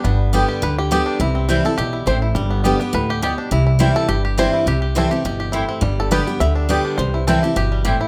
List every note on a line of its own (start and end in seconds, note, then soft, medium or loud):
0.00 0.33 G3 medium
0.00 0.31 D4 medium
0.00 0.48 G4 medium
0.04 0.42 G1 loud
0.04 0.60 G2 medium
0.04 0.46 B3 medium
0.33 0.61 D3 medium
0.33 1.48 G3 medium
0.33 0.61 G3 medium
0.33 0.43 B3 medium
0.33 0.61 B3 loud
0.33 0.43 G4 medium
0.33 0.62 G4 loud
0.33 0.43 D5 medium
0.33 0.44 G5 loud
0.48 0.78 G4 medium
0.62 1.00 D2 medium
0.62 0.90 D3 medium
0.62 0.78 B4 medium
0.78 0.91 G4 medium
0.91 1.19 D3 medium
0.91 1.19 G3 loud
0.91 1.01 B3 medium
0.91 1.19 B3 medium
0.91 1.01 G4 medium
0.91 1.21 G4 medium
0.91 1.19 G4 loud
0.91 1.01 D5 loud
0.91 1.01 G5 medium
1.06 1.20 D4 medium
1.20 1.57 C2 loud
1.20 1.75 C3 medium
1.20 1.65 E4 medium
1.35 1.75 C4 medium
1.48 1.64 E3 medium
1.48 2.34 G3 medium
1.48 1.64 G3 medium
1.48 1.59 C4 medium
1.48 1.65 C4 medium
1.48 1.59 E4 medium
1.48 1.64 E4 medium
1.48 1.59 C5 medium
1.48 1.59 G5 loud
1.65 1.78 C4 medium
1.65 1.77 E4 medium
1.65 1.79 A4 medium
1.78 2.03 B1 medium
1.78 2.06 B2 medium
1.78 2.05 G4 medium
1.93 2.07 E4 medium
2.06 2.31 A1 medium
2.06 2.35 A2 medium
2.06 2.16 C4 medium
2.06 2.16 E4 medium
2.06 2.16 C5 medium
2.06 2.22 C5 loud
2.06 2.17 G5 loud
2.22 2.35 E4 medium
2.35 2.72 G1 loud
2.35 2.91 G2 medium
2.35 2.63 G3 medium
2.51 2.79 B3 medium
2.64 2.80 D3 medium
2.64 3.80 G3 medium
2.64 2.80 G3 medium
2.64 2.74 B3 medium
2.64 2.80 B3 medium
2.64 2.74 G4 loud
2.64 2.79 G4 loud
2.64 2.74 D5 medium
2.64 2.74 G5 loud
2.80 3.19 B3 medium
2.80 2.94 B3 medium
2.80 2.93 G4 medium
2.93 3.31 D2 medium
2.93 3.21 A2 medium
2.93 3.10 B4 medium
3.10 3.22 G4 medium
3.22 3.50 B2 medium
3.22 3.32 B3 medium
3.22 3.32 G4 medium
3.22 3.50 G4 medium
3.22 3.32 D5 medium
3.22 3.33 G5 loud
3.38 3.51 D4 medium
3.51 3.89 C2 loud
3.51 4.06 C3 medium
3.51 3.65 E4 medium
3.67 4.06 E4 medium
3.79 4.07 E3 medium
3.79 4.08 G3 medium
3.79 5.01 G3 medium
3.79 3.90 C4 medium
3.79 4.08 C4 loud
3.79 3.90 E4 medium
3.79 4.08 E4 loud
3.79 3.90 C5 loud
3.79 3.90 G5 medium
3.96 4.09 A4 loud
4.09 4.46 G1 medium
4.09 4.64 G2 medium
4.09 4.24 G4 medium
4.25 4.67 G4 medium
4.37 4.65 E3 medium
4.37 4.66 G3 medium
4.37 4.48 C4 medium
4.37 4.66 C4 loud
4.37 4.48 E4 medium
4.37 4.66 E4 medium
4.37 4.48 C5 medium
4.37 4.53 C5 loud
4.37 4.48 G5 medium
4.53 4.93 E4 medium
4.66 5.03 C2 loud
4.66 5.22 C3 medium
4.66 4.81 G4 loud
4.82 5.11 G4 medium
4.95 5.11 E3 medium
4.95 5.11 G3 medium
4.95 5.05 C4 medium
4.95 5.11 C4 loud
4.95 5.06 E4 medium
4.95 5.10 E4 loud
4.95 5.25 A4 loud
4.95 5.06 C5 medium
4.95 5.06 G5 loud
5.11 5.25 C4 medium
5.11 5.24 E4 medium
5.11 5.26 G4 medium
5.25 5.62 G1 medium
5.25 5.53 B2 medium
5.25 5.39 G4 medium
5.40 6.03 G4 medium
5.52 5.81 A2 medium
5.52 5.63 C4 medium
5.52 5.82 E4 medium
5.52 5.64 E4 medium
5.52 5.64 C5 medium
5.52 5.64 G5 medium
5.69 5.82 C4 medium
5.81 6.19 G1 loud
5.81 6.37 G2 medium
5.81 7.22 G3 medium
6.00 6.11 A4 medium
6.11 6.26 D3 medium
6.11 6.27 G3 medium
6.11 6.27 B3 medium
6.11 6.21 B3 medium
6.11 6.22 G4 medium
6.11 6.26 G4 loud
6.11 6.40 B4 loud
6.11 6.22 D5 loud
6.11 6.22 G5 loud
6.27 6.67 B3 medium
6.27 6.41 B3 medium
6.27 6.40 G4 medium
6.40 6.77 D2 medium
6.40 6.67 D3 medium
6.40 6.55 E5 loud
6.55 6.83 D4 medium
6.69 6.97 D3 medium
6.69 6.97 G3 loud
6.69 6.79 B3 medium
6.69 6.97 B3 loud
6.69 6.79 G4 medium
6.69 6.97 G4 loud
6.69 6.79 D5 medium
6.69 6.97 D5 loud
6.69 6.80 G5 medium
6.85 6.98 D4 medium
6.98 7.35 C2 loud
6.98 7.54 C3 medium
6.98 7.25 C5 medium
7.14 7.27 E4 medium
7.27 7.43 E3 medium
7.27 7.43 G3 loud
7.27 7.37 C4 loud
7.27 7.43 C4 medium
7.27 7.37 E4 medium
7.27 7.43 E4 medium
7.27 7.57 A4 medium
7.27 7.37 C5 medium
7.27 7.38 G5 medium
7.43 7.57 C4 medium
7.43 7.56 E4 medium
7.43 7.55 G4 medium
7.56 7.93 G1 medium
7.56 7.84 B2 medium
7.56 7.83 G4 medium
7.72 8.08 G3 medium
7.85 8.08 A2 medium
7.85 7.95 C4 medium
7.85 7.95 E4 medium
7.85 8.08 G4 medium
7.85 7.96 C5 medium
7.85 7.96 G5 loud
8.01 8.08 E4 medium